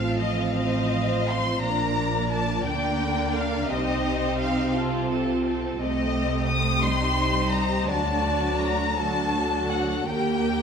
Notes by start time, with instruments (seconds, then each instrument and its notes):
Already playing: double bass section A1, cello section A2, viola section F3 C4, violin section A4 F5
0.20 violin section D#5
0.58 violin section C5 D#5
1.30 violin section C6
1.61 double bass section A#1, cello section A#2, viola section F3 D4, violin section A#4 D5 A#5
2.33 violin section A5
2.65 double bass section D2, cello section D3, viola section A#3 D4, violin section A#4 G5
3.37 violin section F5
3.71 double bass section C2, cello section C3, viola section C4 D#4, violin section G4 C5 D#5
4.41 violin section F5
4.75 viola section F4, violin section F4 A4
5.10 violin section A4
5.45 violin section A4
5.78 double bass section C2, cello section C3, viola section A3 C4, violin section G4 D#5
6.49 violin section D#6
6.82 viola section G3 D#4, violin section C5 C6
7.52 violin section A#5
7.87 double bass section D2, cello section D2, viola section F#3 D4, violin section F#4 D5 A5
8.60 violin section A#5
8.95 viola section F#3 D4, violin section F#4 A4 A5
9.70 violin section F#5
10.07 double bass section D#2, cello section D#2, viola section A#3 G4, violin section G4 A#4 G5